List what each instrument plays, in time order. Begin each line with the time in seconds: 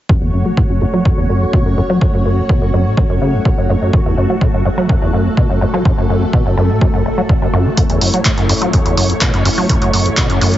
0.09 acid bass F#2, string machine A3 F#4 C#5, kick
0.22 acid bass E2
0.33 acid bass F#2
0.46 acid bass F#3
0.57 acid bass A2, kick
0.70 acid bass F#2
0.81 acid bass F#2
0.94 acid bass F#3
1.05 acid bass F#2, kick
1.18 acid bass E2
1.29 acid bass F#2
1.42 acid bass E2
1.53 acid bass B2, kick
1.66 acid bass F#2
1.77 acid bass F#2
1.90 acid bass F#3
2.01 acid bass F#2, kick
2.14 acid bass F#2
2.25 acid bass F#2
2.38 acid bass E2
2.49 acid bass B2, kick
2.62 acid bass F#2
2.73 acid bass F#2
2.86 acid bass A2
2.97 acid bass F#2, kick
3.10 acid bass F#2
3.21 acid bass C#3
3.34 acid bass F#2
3.45 acid bass F#2, kick
3.58 acid bass F#2
3.69 acid bass F#2
3.82 acid bass F#2
3.93 acid bass F#2, string machine A4, kick
4.06 acid bass E2
4.17 acid bass F#2
4.30 acid bass F#3
4.41 acid bass A2, kick
4.54 acid bass F#2
4.65 acid bass F#2
4.78 acid bass F#3
4.89 acid bass F#2, kick
5.02 acid bass E2
5.13 acid bass F#2
5.26 acid bass E2
5.37 acid bass B2, kick
5.50 acid bass F#2
5.61 acid bass F#2
5.74 acid bass F#3
5.85 acid bass F#2, kick
5.98 acid bass F#2
6.09 acid bass F#2
6.22 acid bass E2
6.33 acid bass B2, kick
6.46 acid bass F#2
6.57 acid bass F#2
6.70 acid bass A2
6.81 acid bass F#2, kick
6.94 acid bass F#2
7.06 acid bass F#1
7.18 acid bass F#3
7.29 acid bass E2, kick
7.42 acid bass F#2
7.53 acid bass F#2
7.66 acid bass F#3
7.77 acid bass F#2, string machine E4 C#5, kick, closed hi-hat
7.90 acid bass E2, closed hi-hat
8.01 acid bass F#2, open hi-hat
8.14 acid bass F#3, closed hi-hat
8.25 acid bass A2, kick, clap, closed hi-hat
8.38 acid bass F#2, closed hi-hat
8.49 acid bass F#2, open hi-hat
8.62 acid bass F#3, closed hi-hat
8.73 acid bass F#2, kick, closed hi-hat
8.86 acid bass E2, closed hi-hat
8.97 acid bass F#2, open hi-hat
9.10 acid bass E2, closed hi-hat
9.21 acid bass B2, kick, clap, closed hi-hat
9.34 acid bass F#2, closed hi-hat
9.45 acid bass F#2, open hi-hat
9.58 acid bass F#3
9.69 acid bass F#2, kick, closed hi-hat
9.82 acid bass F#2, closed hi-hat
9.93 acid bass F#2, open hi-hat
10.06 acid bass E2, closed hi-hat
10.17 acid bass B2, kick, clap, closed hi-hat
10.30 acid bass F#2, closed hi-hat
10.41 acid bass F#2, open hi-hat
10.53 acid bass A2, closed hi-hat